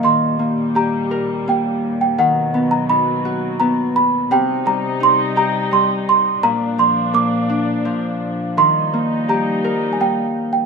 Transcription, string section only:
\new Staff \with { instrumentName = "String section" } { \clef bass \time 3/4 \key ees \major \tempo 4 = 85 << { <bes, g>2. | <b, fis>2. | <g ees'>2. | <f d'>2. |
<g ees'>2. | } \\ { ees,2.~ | ees,2. | c2. | bes,2. |
r2. | } >> }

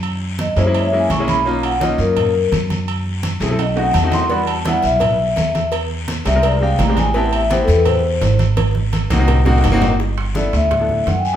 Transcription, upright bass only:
\new Staff \with { instrumentName = "Upright bass" } { \clef bass \time 4/4 \key e \minor \tempo 4 = 168 fis,4. fis,4. b,,4~ | b,,4. fis,4. fis,4~ | fis,4. b,,4. e,4~ | e,4. b,,4. e,4~ |
e,4. bis,,4. a,,4~ | a,,4. e,4. aes,,4~ | aes,,4. c,4. g,,4~ | g,,4. d,4. fis,4 | }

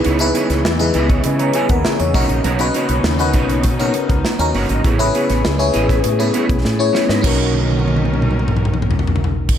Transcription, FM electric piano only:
\new Staff \with { instrumentName = "FM electric piano" } { \time 4/4 \key b \major \tempo 4 = 100 << { r2 <dis'' b''>16 <cis'' ais''>16 <b' gis''>16 <ais' fis''>16 <gis' e''>16 <e' cis''>8 r16 | r1 | r1 | r1 | } \\ { r16 <dis' e' gis' b'>8. r16 <dis' e' gis' b'>8. r4. <cis' dis' fis' ais'>8 | r16 <cis' dis' fis' b'>8. r16 <cis' dis' fis' b'>8. r16 <cis' dis' fis' ais'>8. r16 <cis' dis' fis' ais'>8. | r16 <cis' e' gis' b'>8. r16 <cis' e' gis' cis''>8. r16 <cis' e' gis' b'>8. r16 <cis' e' gis' cis''>8. | <cis' dis' fis' ais'>1 | } >> }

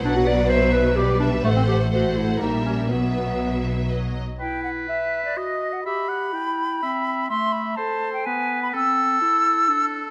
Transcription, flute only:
\new Staff \with { instrumentName = "Flute" } { \time 3/4 \key e \minor \tempo 4 = 125 r2. | r2. | r2. | g''8 fis''8 e''8. d''16 dis''8. fis''16 |
b''2. | c'''8 b''8 a''8. g''16 gis''8. b''16 | e'''2. | }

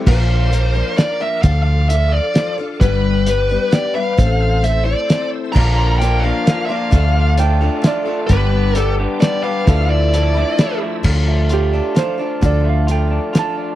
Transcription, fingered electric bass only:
\new Staff \with { instrumentName = "Fingered electric bass" } { \clef bass \time 3/4 \key d \minor \tempo 4 = 131 bes,,2 r4 | d,2 r4 | g,,2 r4 | a,,2 r4 |
bes,,2 r4 | d,2 r4 | g,,2 r4 | d,2 r4 |
d,2 r4 | d,2 r4 | }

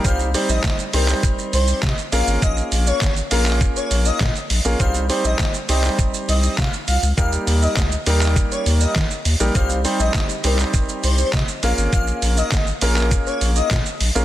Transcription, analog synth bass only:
\new Staff \with { instrumentName = "Analog synth bass" } { \clef bass \time 4/4 \key c \phrygian \tempo 4 = 101 c,8. bes,,16 r8 c,8 r8 c,8 c16 r16 bes,,16 aes,,16 | bes,,8 bes,,8 aes,,8 bes,,8. r16 bes,,8 bes,16 r16 bes,,16 bes,,16 | c,8. bes,,16 r8 c,8 r8 c,8 c16 r16 c,16 des,16 | ees,8 ees,8 des,8 ees,8. r16 ees,8 ees16 r16 ees,16 bes,,16 |
c,8. bes,,16 r8 c,8 r8 c,8 c16 r16 bes,,16 aes,,16 | bes,,8 bes,,8 aes,,8 bes,,8. r16 bes,,8 bes,16 r16 bes,,16 bes,,16 | }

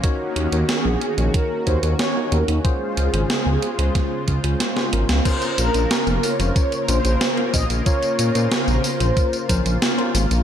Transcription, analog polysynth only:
\new Staff \with { instrumentName = "Analog polysynth" } { \time 4/4 \key bes \minor \tempo 4 = 92 r4 aes'4 bes'8 c''8 des''8 bes'8 | aes'2. r4 | c''8 bes'4 des''8 des''8 c''4 ees''8 | des''4 c''2~ c''8 r8 | }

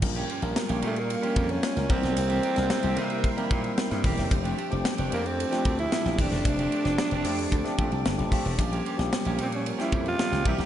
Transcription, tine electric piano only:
\new Staff \with { instrumentName = "Tine electric piano" } { \time 4/4 \key bes \lydian \tempo 4 = 112 << { r1 | r1 | r1 | r2 r8 a''8 r8 f''8 |
r1 | } \\ { <g bes des' f' bes'>8 r16 <g bes des' f' bes'>8 r16 <g bes des' f' bes'>8 r16 <g bes c' des' f' bes'>8. r16 <g bes des' f' bes'>16 <g bes c' e' bes'>8~ | <g bes c' e' bes'>8 r16 <g bes c' e' bes'>8 r16 <g bes c' e' bes'>8 r16 <g bes c' ees' e' bes'>8. r16 <g bes c' e' bes'>8 r16 | <f a c' d' g'>8 r16 <f a c' d' g'>8 r16 <f a c' d' g'>8 r16 <f a c' d' f' g'>8. r16 <f a c' d' g'>8 r16 | <f a c' d' g'>8 r16 <f a c' d' g'>8 r16 <f a c' d' g'>8 r16 <f a c' d' g'>8. r16 <f a c' d' g'>8 r16 |
<f g bes des' g'>8 r16 <f g bes des' g'>8 r16 <f g bes des' g'>8 r16 <f g bes des' g'>8. r16 <f g bes des' g'>16 <e g bes c' g'>8 | } >> }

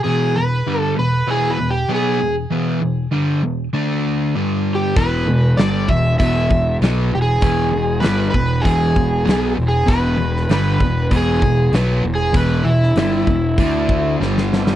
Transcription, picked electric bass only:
\new Staff \with { instrumentName = "Picked electric bass" } { \clef bass \time 4/4 \key d \lydian \tempo 4 = 98 r1 | r1 | e,,8 e,,8 g,,8 e,,8 e,,8 e,,8 b,,8 e,,8 | e,,8 e,,8 g,,8 e,,8 e,,8 e,,8 b,,8 e,,8 |
e,,8 e,,8 g,,8 e,,8 e,,8 e,,8 b,,8 e,,8 | e,,8 e,,8 g,,8 e,,8 d,4 g,,4 | }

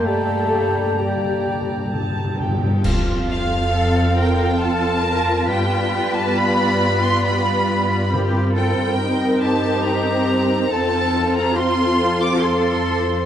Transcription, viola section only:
\new Staff \with { instrumentName = "Viola section" } { \time 3/4 \key f \mixolydian \tempo 4 = 69 << { a'4 g'4 r4 | f'2.~ | f'2.~ | f'4 ees'2 |
f'2. | } \\ { r2. | c'2. | b2. | c'2.~ |
c'2. | } >> }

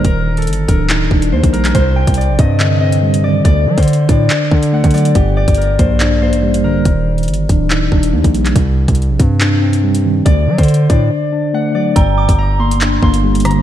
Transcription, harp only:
\new Staff \with { instrumentName = "Harp" } { \time 4/4 \key g \minor \tempo 4 = 141 bes'8. a'8. bes'4. c''8 bes'8 | c''8 g''8 d''8 ees''4 ees''4 d''8 | d''8. c''8. d''4. fis''8 d''8 | g'8 d''8 bes'8 c''4 c''4 bes'8 |
r1 | r1 | d''8. c''8. d''4. fis''8 d''8 | g''8 d'''8 bes''8 c'''4 c'''4 bes''8 | }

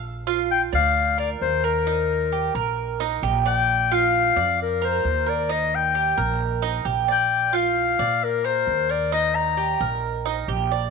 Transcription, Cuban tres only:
\new Staff \with { instrumentName = "Cuban tres" } { \time 4/4 \key bes \major \tempo 4 = 132 r8 f'4 d''4 bes'4 bes'8 | ees'4 g'8 bes'4 ees'8 g'8 d''8~ | d''8 f'4 d''4 bes'4 bes'8 | ees'4 g'8 bes'4 ees'8 g'8 d''8~ |
d''8 f'4 d''4 bes'4 bes'8 | ees'4 g'8 bes'4 ees'8 g'8 d''8 | }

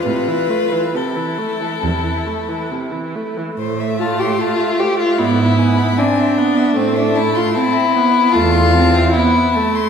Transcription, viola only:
\new Staff \with { instrumentName = "Viola" } { \time 4/4 \key a \minor \tempo 4 = 75 c16 e16 a16 e16 c16 e16 a16 e16 c16 e16 a16 e16 c16 e16 a16 e16 | a2 b8 b8 c'8 b8 | a4 c'8 b8 a8 c'8 b8 a8 | }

